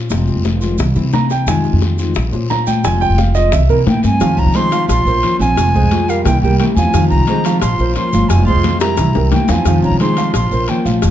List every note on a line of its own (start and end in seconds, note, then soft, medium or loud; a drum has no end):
0.00 0.10 F4 medium
0.00 0.10 C5 soft
0.10 0.35 F1 loud
0.10 0.44 C3 medium
0.10 0.42 F3 medium
0.10 0.43 G#3 medium
0.10 0.44 C4 medium
0.10 0.44 F4 medium
0.10 high bongo medium
0.10 high conga soft
0.10 long guiro medium
0.10 maracas medium
0.27 high bongo soft
0.27 high conga soft
0.27 maracas soft
0.36 0.77 F1 medium
0.44 0.61 F3 soft
0.44 0.61 G#3 medium
0.44 0.61 C4 soft
0.44 0.60 F4 medium
0.44 high bongo medium
0.44 high conga medium
0.44 short guiro medium
0.44 maracas soft
0.61 0.79 F3 medium
0.61 0.79 G#3 medium
0.61 0.78 C4 medium
0.61 0.78 F4 medium
0.61 high conga soft
0.61 short guiro medium
0.61 maracas medium
0.78 0.95 C2 loud
0.78 muted steel-string acoustic guitar stroke medium
0.78 high bongo medium
0.78 high conga soft
0.78 low conga medium
0.78 long guiro medium
0.78 maracas medium
0.95 1.45 C3 loud
0.95 1.11 E3 soft
0.95 1.12 A#3 soft
0.95 1.12 C4 medium
0.95 1.12 E4 medium
0.95 high bongo soft
0.95 high conga soft
0.95 low conga medium
0.95 maracas soft
1.12 1.46 E3 medium
1.12 1.47 A#3 soft
1.12 1.47 C4 soft
1.12 1.47 E4 medium
1.12 1.30 A#5 medium
1.12 high bongo soft
1.12 low bongo medium
1.12 high conga medium
1.12 short guiro medium
1.12 maracas soft
1.30 1.47 G5 medium
1.30 high bongo soft
1.30 short guiro medium
1.30 maracas medium
1.47 1.71 F2 medium
1.47 1.81 C3 medium
1.47 1.80 D#3 medium
1.47 1.81 G#3 medium
1.47 1.81 C4 medium
1.47 1.81 F4 medium
1.47 1.80 G#5 medium
1.47 high bongo medium
1.47 long guiro medium
1.47 maracas medium
1.64 high bongo soft
1.64 high conga soft
1.64 maracas soft
1.73 2.14 F2 medium
1.81 1.98 D#3 soft
1.81 1.98 G#3 soft
1.81 1.98 C4 medium
1.81 1.98 F4 medium
1.81 high bongo medium
1.81 high conga medium
1.81 short guiro medium
1.81 maracas soft
1.98 2.16 D#3 medium
1.98 2.16 G#3 medium
1.98 2.15 C4 medium
1.98 2.15 F4 medium
1.98 short guiro medium
1.98 maracas medium
2.15 2.32 A#1 medium
2.15 muted steel-string acoustic guitar stroke medium
2.15 high bongo medium
2.15 high conga soft
2.15 long guiro medium
2.15 maracas medium
2.32 2.82 A#2 medium
2.32 2.48 A#3 soft
2.32 2.49 C#4 medium
2.32 2.49 F4 medium
2.32 2.49 C5 medium
2.32 high bongo soft
2.32 high conga soft
2.32 maracas soft
2.49 2.83 A#3 soft
2.49 2.84 C#4 medium
2.49 2.84 F4 soft
2.49 2.84 C5 medium
2.49 2.67 A#5 loud
2.49 high bongo soft
2.49 low bongo medium
2.49 high conga soft
2.49 short guiro medium
2.49 maracas soft
2.67 2.84 G5 medium
2.67 high bongo soft
2.67 high conga medium
2.67 short guiro medium
2.67 maracas medium
2.84 3.08 F1 medium
2.84 3.18 C3 medium
2.84 3.17 F3 medium
2.84 3.18 G#3 medium
2.84 3.18 C4 medium
2.84 3.19 F4 medium
2.84 3.01 G#5 loud
2.84 high bongo medium
2.84 long guiro medium
2.84 maracas medium
3.01 3.18 G5 loud
3.01 high bongo soft
3.01 high conga soft
3.01 maracas soft
3.09 3.50 F1 medium
3.18 3.35 F3 soft
3.18 3.35 G#3 soft
3.18 3.35 C4 medium
3.18 3.35 F4 medium
3.18 3.35 F5 medium
3.18 high bongo medium
3.18 high conga medium
3.18 short guiro medium
3.18 maracas soft
3.35 3.53 F3 medium
3.35 3.53 G#3 medium
3.35 3.53 C4 medium
3.35 3.52 F4 medium
3.35 3.52 D#5 loud
3.35 high conga soft
3.35 short guiro medium
3.35 maracas medium
3.52 3.69 C2 loud
3.52 3.69 E5 medium
3.52 muted steel-string acoustic guitar stroke medium
3.52 high bongo medium
3.52 high conga soft
3.52 low conga medium
3.52 long guiro medium
3.52 maracas medium
3.69 3.86 C3 loud
3.69 3.86 E3 medium
3.69 3.87 A#3 medium
3.69 3.87 C4 medium
3.69 3.86 E4 medium
3.69 3.80 A#4 medium
3.69 high bongo soft
3.69 high conga soft
3.69 maracas soft
3.86 4.02 A#2 medium
3.86 4.20 E3 soft
3.86 4.03 A#3 medium
3.86 4.21 A#3 soft
3.86 4.20 C4 soft
3.86 4.21 E4 medium
3.86 4.03 G5 medium
3.86 high bongo soft
3.86 low bongo medium
3.86 high conga medium
3.86 short guiro medium
3.86 maracas soft
4.03 4.19 G2 medium
4.03 4.37 C4 medium
4.03 4.41 G#5 loud
4.03 high bongo soft
4.03 high conga medium
4.03 short guiro medium
4.03 maracas medium
4.20 4.37 F2 medium
4.20 4.54 C3 medium
4.20 4.54 D#3 medium
4.20 4.49 F3 medium
4.20 4.54 G#3 medium
4.20 4.54 C4 medium
4.20 4.49 F4 medium
4.20 4.55 F4 medium
4.20 4.49 F5 medium
4.20 cowbell loud
4.20 long guiro medium
4.20 maracas medium
4.37 4.46 C2 loud
4.37 4.53 C#4 medium
4.37 4.57 A#5 loud
4.37 high conga soft
4.37 maracas soft
4.46 4.87 F3 medium
4.53 4.88 C3 medium
4.53 4.89 D#3 medium
4.53 4.69 G#3 medium
4.53 4.89 G#3 medium
4.53 4.89 C4 medium
4.53 4.88 D#4 medium
4.53 4.88 F4 medium
4.53 4.69 G#4 medium
4.53 4.69 C5 medium
4.53 4.89 C6 loud
4.53 cowbell medium
4.53 high conga medium
4.53 short guiro medium
4.53 maracas soft
4.71 5.00 F3 medium
4.71 5.00 F4 loud
4.71 5.00 F5 loud
4.71 cowbell medium
4.71 high conga soft
4.71 short guiro medium
4.71 maracas medium
4.88 5.05 A#1 loud
4.88 5.36 F4 medium
4.88 5.37 C6 loud
4.88 muted steel-string acoustic guitar stroke medium
4.88 cowbell loud
4.88 long guiro medium
4.88 maracas medium
5.05 5.22 A#1 medium
5.05 5.34 A#3 medium
5.05 5.22 C#4 soft
5.05 5.23 F4 soft
5.05 5.35 A#4 medium
5.05 5.22 C5 soft
5.05 5.35 C5 medium
5.05 high conga soft
5.05 maracas soft
5.23 5.39 F3 medium
5.23 5.39 A#3 medium
5.23 5.40 C#4 medium
5.23 5.39 F4 medium
5.23 5.38 C5 medium
5.23 cowbell medium
5.23 high conga soft
5.23 short guiro medium
5.23 maracas soft
5.39 5.56 A#1 medium
5.39 5.68 F3 medium
5.39 6.07 C4 medium
5.39 5.57 C#4 soft
5.39 5.57 F4 soft
5.39 5.69 F4 medium
5.39 5.69 F5 medium
5.39 6.11 G#5 loud
5.39 short guiro medium
5.39 maracas medium
5.56 5.73 F1 medium
5.56 5.89 C3 medium
5.56 5.90 F3 medium
5.56 5.90 G#3 medium
5.56 5.91 C4 medium
5.56 5.91 F4 medium
5.56 cowbell loud
5.56 high conga soft
5.56 long guiro medium
5.56 maracas medium
5.74 5.82 C2 medium
5.74 6.03 G#3 medium
5.74 6.03 G#4 medium
5.74 6.03 C5 medium
5.74 high conga soft
5.74 maracas soft
5.82 6.23 F2 medium
5.90 6.24 C3 medium
5.90 6.25 F3 medium
5.90 6.25 G#3 medium
5.90 6.25 C4 medium
5.90 6.25 F4 medium
5.90 cowbell medium
5.90 high conga medium
5.90 short guiro medium
5.90 maracas soft
6.07 6.23 G3 medium
6.07 6.25 G#3 medium
6.07 6.23 G4 medium
6.07 6.23 A#4 medium
6.07 6.24 F5 medium
6.07 high conga soft
6.07 short guiro medium
6.07 maracas medium
6.25 6.41 C2 loud
6.25 6.40 E3 medium
6.25 6.41 A#3 medium
6.25 6.40 E4 medium
6.25 6.40 E5 medium
6.25 6.41 G5 medium
6.25 muted steel-string acoustic guitar stroke medium
6.25 cowbell loud
6.25 high conga soft
6.25 low conga medium
6.25 long guiro medium
6.25 maracas medium
6.42 6.58 C2 medium
6.42 6.71 G3 medium
6.42 6.58 A#3 medium
6.42 6.60 A#3 soft
6.42 6.60 C4 soft
6.42 6.59 E4 soft
6.42 6.71 G4 medium
6.42 6.72 A#4 medium
6.42 6.58 G5 medium
6.42 high conga soft
6.42 maracas soft
6.59 6.76 C3 medium
6.59 6.76 E3 medium
6.59 6.65 A#3 medium
6.59 6.76 A#3 medium
6.59 6.77 C4 medium
6.59 6.76 E4 medium
6.59 6.65 G5 medium
6.59 cowbell medium
6.59 high conga medium
6.59 short guiro medium
6.59 maracas soft
6.75 6.92 E2 medium
6.75 6.91 F3 medium
6.75 6.94 A#3 soft
6.75 7.08 C4 medium
6.75 6.93 C4 soft
6.75 6.93 E4 medium
6.75 6.92 F4 medium
6.75 6.92 F5 medium
6.75 7.08 G#5 loud
6.75 high conga medium
6.75 short guiro medium
6.75 maracas medium
6.93 7.10 F2 loud
6.93 7.27 C3 medium
6.93 7.27 D#3 medium
6.93 7.22 F3 medium
6.93 7.27 G#3 medium
6.93 7.28 C4 medium
6.93 7.22 F4 medium
6.93 7.28 F4 medium
6.93 7.22 F5 medium
6.93 cowbell medium
6.93 high conga soft
6.93 long guiro medium
6.93 maracas medium
7.10 7.18 C2 medium
7.10 7.58 D#4 medium
7.10 7.58 A#5 loud
7.10 high conga soft
7.10 maracas soft
7.19 7.60 F3 medium
7.27 7.61 C3 medium
7.27 7.61 D#3 medium
7.27 7.61 G#3 medium
7.27 7.42 G#3 medium
7.27 7.61 C4 medium
7.27 7.61 F4 medium
7.27 7.42 G#4 medium
7.27 7.42 C5 medium
7.27 cowbell medium
7.27 high conga medium
7.27 short guiro medium
7.27 maracas soft
7.44 7.73 F3 medium
7.44 7.73 F4 medium
7.44 7.74 F5 loud
7.44 cowbell medium
7.44 high conga soft
7.44 short guiro medium
7.44 maracas medium
7.59 7.78 A#1 loud
7.59 7.92 F4 medium
7.59 7.93 C6 medium
7.59 muted steel-string acoustic guitar stroke medium
7.59 cowbell loud
7.59 high conga soft
7.59 long guiro medium
7.59 maracas medium
7.78 7.95 A#1 medium
7.78 8.07 A#3 medium
7.78 7.95 C#4 soft
7.78 7.95 F4 soft
7.78 8.08 A#4 medium
7.78 7.95 C5 soft
7.78 8.08 C5 medium
7.78 high conga soft
7.78 maracas soft
7.94 8.12 F3 medium
7.94 8.12 A#3 medium
7.94 8.12 C#4 medium
7.94 8.28 F4 medium
7.94 8.12 F4 medium
7.94 8.11 C5 medium
7.94 8.31 C6 medium
7.94 cowbell medium
7.94 high conga soft
7.94 short guiro medium
7.94 maracas soft
8.13 8.29 G1 medium
8.13 8.41 F3 medium
8.13 8.30 C#4 soft
8.13 8.29 F4 soft
8.13 8.42 F4 medium
8.13 8.42 F5 medium
8.13 high conga medium
8.13 short guiro medium
8.13 maracas medium
8.28 8.46 F1 medium
8.28 8.62 C3 medium
8.28 8.63 F3 medium
8.28 8.63 G#3 medium
8.28 8.46 C4 medium
8.28 8.63 C4 medium
8.28 8.64 F4 loud
8.28 8.46 G#5 medium
8.28 cowbell loud
8.28 long guiro medium
8.28 maracas medium
8.45 8.55 C2 medium
8.45 8.75 G#3 medium
8.45 8.78 F4 medium
8.45 8.75 G#4 medium
8.45 8.76 C5 medium
8.45 8.78 C6 loud
8.45 high conga soft
8.45 maracas soft
8.56 8.96 F2 medium
8.63 8.97 C3 medium
8.63 8.97 F3 medium
8.63 8.98 G#3 medium
8.63 8.98 C4 medium
8.63 8.98 F4 medium
8.63 cowbell medium
8.63 high conga loud
8.63 short guiro medium
8.63 maracas soft
8.80 8.95 G3 medium
8.80 9.28 E4 medium
8.80 8.95 G4 medium
8.80 8.96 A#4 medium
8.80 9.28 A#5 loud
8.80 high bongo loud
8.80 short guiro medium
8.80 maracas medium
8.97 9.14 C2 loud
8.97 9.12 E3 medium
8.97 9.12 E4 medium
8.97 9.13 E5 medium
8.97 muted steel-string acoustic guitar stroke medium
8.97 cowbell loud
8.97 high bongo medium
8.97 high conga soft
8.97 low conga medium
8.97 long guiro medium
8.97 maracas medium
9.14 9.31 C2 medium
9.14 9.43 G3 medium
9.14 9.32 A#3 soft
9.14 9.32 C4 soft
9.14 9.31 E4 soft
9.14 9.43 G4 medium
9.14 9.44 A#4 medium
9.14 low bongo medium
9.14 high conga soft
9.14 maracas soft
9.32 9.48 C3 medium
9.32 9.49 E3 medium
9.32 9.48 A#3 medium
9.32 9.49 A#3 medium
9.32 9.49 C4 medium
9.32 9.48 E4 medium
9.32 9.52 G5 medium
9.32 cowbell medium
9.32 low bongo medium
9.32 high conga medium
9.32 short guiro medium
9.32 maracas soft
9.48 9.65 E2 medium
9.48 9.64 F3 medium
9.48 9.67 A#3 soft
9.48 9.82 C4 medium
9.48 9.66 C4 soft
9.48 9.66 E4 soft
9.48 9.64 F4 medium
9.48 9.64 F5 medium
9.48 9.83 G#5 medium
9.48 low bongo loud
9.48 short guiro medium
9.48 maracas medium
9.65 9.82 F2 medium
9.65 9.98 C3 medium
9.65 9.99 D#3 medium
9.65 9.95 F3 medium
9.65 10.00 G#3 medium
9.65 10.00 C4 medium
9.65 9.95 F4 medium
9.65 10.01 F4 medium
9.65 9.95 F5 medium
9.65 cowbell loud
9.65 long guiro medium
9.65 maracas medium
9.83 9.91 C2 medium
9.83 9.99 C#4 medium
9.83 9.99 A#5 medium
9.83 high conga soft
9.83 maracas soft
9.91 10.32 F3 medium
10.00 10.33 C3 medium
10.00 10.34 D#3 medium
10.00 10.15 G#3 medium
10.00 10.34 G#3 medium
10.00 10.34 C4 medium
10.00 10.32 D#4 medium
10.00 10.34 F4 medium
10.00 10.15 G#4 medium
10.00 10.15 C5 medium
10.00 10.32 C6 medium
10.00 cowbell medium
10.00 high conga medium
10.00 short guiro medium
10.00 maracas soft
10.17 10.45 F3 medium
10.17 10.46 F4 medium
10.17 10.46 F5 medium
10.17 cowbell medium
10.17 short guiro medium
10.17 maracas medium
10.34 10.50 A#1 loud
10.34 10.66 F4 medium
10.34 10.71 C6 medium
10.34 muted steel-string acoustic guitar stroke medium
10.34 cowbell loud
10.34 long guiro medium
10.34 maracas medium
10.51 10.67 A#1 medium
10.51 10.79 A#3 medium
10.51 10.69 C#4 soft
10.51 10.68 F4 soft
10.51 10.79 A#4 medium
10.51 10.68 C5 soft
10.51 10.80 C5 medium
10.51 high conga soft
10.51 maracas soft
10.68 10.85 F3 medium
10.68 10.85 A#3 medium
10.68 10.86 C#4 medium
10.68 10.86 F4 medium
10.68 10.85 C5 medium
10.68 10.86 G5 medium
10.68 cowbell medium
10.68 high conga soft
10.68 short guiro medium
10.68 maracas soft
10.85 11.02 A#1 medium
10.85 11.11 F3 medium
10.85 11.03 C#4 soft
10.85 11.11 F4 medium
10.85 11.03 F4 soft
10.85 11.02 C5 medium
10.85 11.11 F5 medium
10.85 high conga medium
10.85 short guiro medium
10.85 maracas medium
11.02 11.11 F1 loud
11.02 11.11 C3 medium
11.02 11.11 F3 medium
11.02 11.11 G#3 medium
11.02 11.11 C4 medium
11.02 11.11 F4 medium
11.02 cowbell medium
11.02 high conga soft
11.02 long guiro medium
11.02 maracas medium